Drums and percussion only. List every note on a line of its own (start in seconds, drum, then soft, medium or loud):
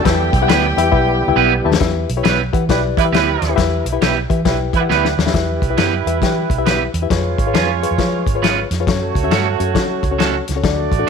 0.05 kick loud
0.05 snare loud
0.05 closed hi-hat medium
0.33 kick loud
0.33 closed hi-hat medium
0.49 snare loud
0.49 closed hi-hat medium
0.78 closed hi-hat medium
0.92 kick medium
1.74 snare loud
1.80 kick loud
1.80 snare loud
1.80 closed hi-hat medium
2.09 closed hi-hat medium
2.25 snare loud
2.25 closed hi-hat medium
2.53 kick medium
2.53 closed hi-hat medium
2.69 kick medium
2.69 snare medium
2.69 closed hi-hat medium
2.97 kick loud
2.97 closed hi-hat medium
3.14 snare loud
3.14 closed hi-hat medium
3.42 snare soft
3.42 closed hi-hat medium
3.58 kick loud
3.58 snare loud
3.58 closed hi-hat medium
3.86 closed hi-hat medium
4.02 snare loud
4.02 closed hi-hat medium
4.30 kick medium
4.30 closed hi-hat medium
4.45 kick medium
4.45 snare loud
4.45 closed hi-hat medium
4.73 kick medium
4.73 closed hi-hat medium
4.91 snare soft
5.05 snare medium
5.19 snare medium
5.27 snare medium
5.34 kick medium
5.34 snare loud
5.34 closed hi-hat medium
5.62 kick medium
5.62 closed hi-hat medium
5.77 snare loud
5.77 closed hi-hat medium
6.07 closed hi-hat medium
6.22 kick medium
6.22 snare medium
6.22 closed hi-hat medium
6.50 kick medium
6.50 closed hi-hat medium
6.66 snare medium
6.66 closed hi-hat medium
6.94 closed hi-hat medium
7.10 kick medium
7.10 snare loud
7.10 closed hi-hat medium
7.38 kick medium
7.38 closed hi-hat medium
7.54 snare loud
7.54 closed hi-hat medium
7.83 closed hi-hat medium
7.98 kick medium
7.98 snare medium
7.98 closed hi-hat medium
8.27 kick medium
8.27 closed hi-hat medium
8.44 snare medium
8.44 closed hi-hat medium
8.71 snare soft
8.71 closed hi-hat medium
8.87 kick medium
8.87 snare loud
8.87 closed hi-hat medium
9.15 kick medium
9.15 closed hi-hat medium
9.31 snare loud
9.31 closed hi-hat medium
9.60 closed hi-hat medium
9.75 kick medium
9.75 snare loud
9.75 closed hi-hat medium
10.03 kick medium
10.03 closed hi-hat medium
10.20 snare medium
10.20 closed hi-hat medium
10.48 snare soft
10.48 closed hi-hat medium
10.64 kick loud
10.64 snare loud
10.64 closed hi-hat medium
10.92 kick medium
10.92 closed hi-hat medium